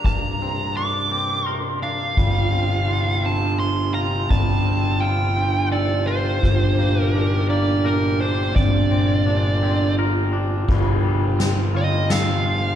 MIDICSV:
0, 0, Header, 1, 7, 480
1, 0, Start_track
1, 0, Tempo, 709220
1, 28, Time_signature, 3, 2, 24, 8
1, 8631, End_track
2, 0, Start_track
2, 0, Title_t, "Lead electric guitar"
2, 0, Program_c, 0, 29
2, 40, Note_on_c, 0, 82, 69
2, 518, Note_off_c, 0, 82, 0
2, 521, Note_on_c, 0, 86, 73
2, 1001, Note_off_c, 0, 86, 0
2, 1001, Note_on_c, 0, 84, 73
2, 1208, Note_off_c, 0, 84, 0
2, 1239, Note_on_c, 0, 77, 68
2, 2206, Note_on_c, 0, 81, 62
2, 2223, Note_off_c, 0, 77, 0
2, 2431, Note_off_c, 0, 81, 0
2, 2434, Note_on_c, 0, 84, 64
2, 2665, Note_off_c, 0, 84, 0
2, 2668, Note_on_c, 0, 82, 70
2, 2892, Note_off_c, 0, 82, 0
2, 2915, Note_on_c, 0, 81, 72
2, 3387, Note_on_c, 0, 79, 60
2, 3407, Note_off_c, 0, 81, 0
2, 3842, Note_off_c, 0, 79, 0
2, 3873, Note_on_c, 0, 74, 65
2, 4108, Note_off_c, 0, 74, 0
2, 4110, Note_on_c, 0, 72, 70
2, 4740, Note_off_c, 0, 72, 0
2, 4740, Note_on_c, 0, 70, 70
2, 5044, Note_off_c, 0, 70, 0
2, 5074, Note_on_c, 0, 74, 64
2, 5318, Note_on_c, 0, 70, 60
2, 5320, Note_off_c, 0, 74, 0
2, 5538, Note_off_c, 0, 70, 0
2, 5553, Note_on_c, 0, 72, 69
2, 5790, Note_off_c, 0, 72, 0
2, 5792, Note_on_c, 0, 74, 59
2, 6724, Note_off_c, 0, 74, 0
2, 7964, Note_on_c, 0, 75, 63
2, 8198, Note_on_c, 0, 77, 67
2, 8204, Note_off_c, 0, 75, 0
2, 8631, Note_off_c, 0, 77, 0
2, 8631, End_track
3, 0, Start_track
3, 0, Title_t, "Tine electric piano"
3, 0, Program_c, 1, 4
3, 1476, Note_on_c, 1, 65, 59
3, 1953, Note_off_c, 1, 65, 0
3, 1957, Note_on_c, 1, 63, 56
3, 2193, Note_off_c, 1, 63, 0
3, 2200, Note_on_c, 1, 62, 56
3, 2675, Note_off_c, 1, 62, 0
3, 2904, Note_on_c, 1, 60, 70
3, 3388, Note_off_c, 1, 60, 0
3, 3637, Note_on_c, 1, 62, 50
3, 3874, Note_off_c, 1, 62, 0
3, 3877, Note_on_c, 1, 63, 60
3, 4348, Note_on_c, 1, 65, 75
3, 4354, Note_off_c, 1, 63, 0
3, 4830, Note_off_c, 1, 65, 0
3, 4830, Note_on_c, 1, 63, 62
3, 5071, Note_off_c, 1, 63, 0
3, 5072, Note_on_c, 1, 62, 57
3, 5552, Note_off_c, 1, 62, 0
3, 5795, Note_on_c, 1, 60, 77
3, 6273, Note_off_c, 1, 60, 0
3, 6515, Note_on_c, 1, 62, 57
3, 6753, Note_off_c, 1, 62, 0
3, 6754, Note_on_c, 1, 65, 60
3, 7222, Note_off_c, 1, 65, 0
3, 7230, Note_on_c, 1, 65, 68
3, 7710, Note_off_c, 1, 65, 0
3, 7711, Note_on_c, 1, 63, 62
3, 7951, Note_off_c, 1, 63, 0
3, 7954, Note_on_c, 1, 50, 56
3, 8432, Note_off_c, 1, 50, 0
3, 8631, End_track
4, 0, Start_track
4, 0, Title_t, "Clean electric guitar"
4, 0, Program_c, 2, 27
4, 33, Note_on_c, 2, 43, 49
4, 285, Note_on_c, 2, 60, 47
4, 519, Note_on_c, 2, 62, 51
4, 751, Note_off_c, 2, 60, 0
4, 754, Note_on_c, 2, 60, 47
4, 990, Note_on_c, 2, 70, 50
4, 1232, Note_off_c, 2, 43, 0
4, 1232, Note_off_c, 2, 62, 0
4, 1240, Note_on_c, 2, 62, 48
4, 1470, Note_off_c, 2, 70, 0
4, 1471, Note_on_c, 2, 55, 53
4, 1475, Note_off_c, 2, 62, 0
4, 1704, Note_off_c, 2, 60, 0
4, 1707, Note_on_c, 2, 60, 47
4, 1949, Note_on_c, 2, 65, 44
4, 2181, Note_off_c, 2, 60, 0
4, 2189, Note_on_c, 2, 60, 50
4, 2661, Note_off_c, 2, 65, 0
4, 2669, Note_on_c, 2, 65, 52
4, 2671, Note_off_c, 2, 55, 0
4, 2914, Note_on_c, 2, 55, 53
4, 3143, Note_off_c, 2, 60, 0
4, 3151, Note_on_c, 2, 60, 49
4, 3387, Note_off_c, 2, 65, 0
4, 3395, Note_on_c, 2, 65, 52
4, 3621, Note_off_c, 2, 60, 0
4, 3630, Note_on_c, 2, 60, 51
4, 3872, Note_on_c, 2, 69, 54
4, 4104, Note_off_c, 2, 65, 0
4, 4113, Note_off_c, 2, 55, 0
4, 4113, Note_on_c, 2, 65, 50
4, 4350, Note_off_c, 2, 60, 0
4, 4351, Note_off_c, 2, 69, 0
4, 4352, Note_off_c, 2, 65, 0
4, 4354, Note_on_c, 2, 43, 53
4, 4591, Note_on_c, 2, 58, 52
4, 4834, Note_on_c, 2, 62, 49
4, 5067, Note_off_c, 2, 58, 0
4, 5075, Note_on_c, 2, 58, 58
4, 5309, Note_on_c, 2, 70, 52
4, 5543, Note_off_c, 2, 62, 0
4, 5551, Note_on_c, 2, 62, 55
4, 5553, Note_off_c, 2, 43, 0
4, 5790, Note_off_c, 2, 70, 0
4, 5791, Note_off_c, 2, 62, 0
4, 5792, Note_on_c, 2, 43, 50
4, 5793, Note_off_c, 2, 58, 0
4, 6030, Note_on_c, 2, 60, 56
4, 6271, Note_on_c, 2, 62, 53
4, 6509, Note_off_c, 2, 60, 0
4, 6517, Note_on_c, 2, 60, 59
4, 6759, Note_on_c, 2, 70, 60
4, 6982, Note_off_c, 2, 62, 0
4, 6990, Note_on_c, 2, 62, 59
4, 6991, Note_off_c, 2, 43, 0
4, 7229, Note_on_c, 2, 55, 50
4, 7230, Note_off_c, 2, 62, 0
4, 7234, Note_off_c, 2, 60, 0
4, 7235, Note_off_c, 2, 70, 0
4, 7467, Note_off_c, 2, 55, 0
4, 7475, Note_on_c, 2, 55, 48
4, 7709, Note_on_c, 2, 60, 56
4, 7948, Note_on_c, 2, 65, 54
4, 8188, Note_on_c, 2, 69, 60
4, 8421, Note_off_c, 2, 65, 0
4, 8429, Note_on_c, 2, 65, 53
4, 8631, Note_off_c, 2, 55, 0
4, 8631, Note_off_c, 2, 60, 0
4, 8631, Note_off_c, 2, 65, 0
4, 8631, Note_off_c, 2, 69, 0
4, 8631, End_track
5, 0, Start_track
5, 0, Title_t, "String section"
5, 0, Program_c, 3, 48
5, 0, Note_on_c, 3, 58, 45
5, 23, Note_on_c, 3, 43, 52
5, 25, Note_on_c, 3, 48, 45
5, 25, Note_on_c, 3, 53, 48
5, 27, Note_on_c, 3, 62, 58
5, 1449, Note_off_c, 3, 58, 0
5, 1453, Note_off_c, 3, 43, 0
5, 1455, Note_off_c, 3, 62, 0
5, 1471, Note_on_c, 3, 57, 49
5, 1474, Note_on_c, 3, 65, 61
5, 4322, Note_off_c, 3, 48, 0
5, 4322, Note_off_c, 3, 53, 0
5, 4324, Note_off_c, 3, 57, 0
5, 4326, Note_off_c, 3, 65, 0
5, 4345, Note_on_c, 3, 58, 53
5, 4345, Note_on_c, 3, 67, 64
5, 4351, Note_on_c, 3, 55, 48
5, 4352, Note_on_c, 3, 46, 60
5, 5774, Note_off_c, 3, 58, 0
5, 5774, Note_off_c, 3, 67, 0
5, 5777, Note_off_c, 3, 55, 0
5, 5806, Note_on_c, 3, 58, 50
5, 5812, Note_on_c, 3, 60, 50
5, 5812, Note_on_c, 3, 65, 62
5, 7205, Note_off_c, 3, 46, 0
5, 7218, Note_off_c, 3, 65, 0
5, 7222, Note_on_c, 3, 53, 47
5, 7224, Note_off_c, 3, 58, 0
5, 7226, Note_on_c, 3, 57, 47
5, 7226, Note_on_c, 3, 65, 61
5, 7227, Note_off_c, 3, 60, 0
5, 7229, Note_on_c, 3, 48, 56
5, 8631, Note_off_c, 3, 48, 0
5, 8631, Note_off_c, 3, 53, 0
5, 8631, Note_off_c, 3, 57, 0
5, 8631, Note_off_c, 3, 65, 0
5, 8631, End_track
6, 0, Start_track
6, 0, Title_t, "Fingered electric bass"
6, 0, Program_c, 4, 33
6, 1470, Note_on_c, 4, 31, 59
6, 2884, Note_off_c, 4, 31, 0
6, 2913, Note_on_c, 4, 31, 65
6, 4325, Note_off_c, 4, 31, 0
6, 4354, Note_on_c, 4, 31, 67
6, 5765, Note_off_c, 4, 31, 0
6, 5792, Note_on_c, 4, 31, 67
6, 7204, Note_off_c, 4, 31, 0
6, 7233, Note_on_c, 4, 31, 63
6, 8631, Note_off_c, 4, 31, 0
6, 8631, End_track
7, 0, Start_track
7, 0, Title_t, "Drums"
7, 28, Note_on_c, 9, 51, 46
7, 30, Note_on_c, 9, 36, 70
7, 96, Note_off_c, 9, 51, 0
7, 98, Note_off_c, 9, 36, 0
7, 271, Note_on_c, 9, 51, 42
7, 339, Note_off_c, 9, 51, 0
7, 509, Note_on_c, 9, 51, 40
7, 577, Note_off_c, 9, 51, 0
7, 991, Note_on_c, 9, 51, 51
7, 1059, Note_off_c, 9, 51, 0
7, 1470, Note_on_c, 9, 51, 43
7, 1471, Note_on_c, 9, 36, 83
7, 1537, Note_off_c, 9, 51, 0
7, 1538, Note_off_c, 9, 36, 0
7, 1709, Note_on_c, 9, 51, 43
7, 1776, Note_off_c, 9, 51, 0
7, 1949, Note_on_c, 9, 51, 40
7, 2017, Note_off_c, 9, 51, 0
7, 2430, Note_on_c, 9, 51, 48
7, 2498, Note_off_c, 9, 51, 0
7, 2911, Note_on_c, 9, 51, 42
7, 2913, Note_on_c, 9, 36, 83
7, 2978, Note_off_c, 9, 51, 0
7, 2981, Note_off_c, 9, 36, 0
7, 3155, Note_on_c, 9, 51, 44
7, 3223, Note_off_c, 9, 51, 0
7, 3393, Note_on_c, 9, 51, 37
7, 3460, Note_off_c, 9, 51, 0
7, 3874, Note_on_c, 9, 51, 47
7, 3941, Note_off_c, 9, 51, 0
7, 4353, Note_on_c, 9, 36, 76
7, 4357, Note_on_c, 9, 51, 45
7, 4421, Note_off_c, 9, 36, 0
7, 4424, Note_off_c, 9, 51, 0
7, 4599, Note_on_c, 9, 51, 43
7, 4666, Note_off_c, 9, 51, 0
7, 4839, Note_on_c, 9, 51, 41
7, 4906, Note_off_c, 9, 51, 0
7, 5313, Note_on_c, 9, 51, 52
7, 5381, Note_off_c, 9, 51, 0
7, 5792, Note_on_c, 9, 51, 48
7, 5793, Note_on_c, 9, 36, 83
7, 5860, Note_off_c, 9, 51, 0
7, 5861, Note_off_c, 9, 36, 0
7, 6034, Note_on_c, 9, 51, 43
7, 6102, Note_off_c, 9, 51, 0
7, 6274, Note_on_c, 9, 51, 44
7, 6341, Note_off_c, 9, 51, 0
7, 6754, Note_on_c, 9, 51, 46
7, 6821, Note_off_c, 9, 51, 0
7, 7232, Note_on_c, 9, 36, 83
7, 7233, Note_on_c, 9, 49, 70
7, 7300, Note_off_c, 9, 36, 0
7, 7300, Note_off_c, 9, 49, 0
7, 7713, Note_on_c, 9, 38, 57
7, 7713, Note_on_c, 9, 42, 41
7, 7781, Note_off_c, 9, 38, 0
7, 7781, Note_off_c, 9, 42, 0
7, 8190, Note_on_c, 9, 38, 68
7, 8190, Note_on_c, 9, 42, 49
7, 8257, Note_off_c, 9, 38, 0
7, 8257, Note_off_c, 9, 42, 0
7, 8631, End_track
0, 0, End_of_file